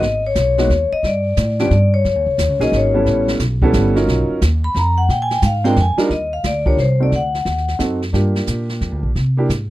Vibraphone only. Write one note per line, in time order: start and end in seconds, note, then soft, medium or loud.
0.00 0.22 D#5 loud
0.26 0.37 C#5 medium
0.40 0.90 C#5 medium
0.93 1.03 D#5 loud
1.07 1.57 D5 medium
1.60 1.91 D5 medium
1.94 2.05 C#5 medium
2.07 2.58 C#5 medium
2.61 2.72 D#5 loud
2.76 3.26 C#5 medium
4.64 4.75 B5 loud
4.78 4.98 A#5 loud
4.98 5.09 F#5 medium
5.10 5.21 G5 medium
5.22 5.32 G#5 loud
5.32 5.43 G5 medium
5.46 5.66 F5 medium
5.65 5.76 G5 loud
5.81 5.93 G#5 medium
6.11 6.31 D#5 medium
6.33 6.38 F5 medium
6.46 6.66 D5 medium
6.67 6.78 C#5 medium
6.80 7.02 C5 medium
7.03 7.12 D5 medium
7.16 7.77 F#5 medium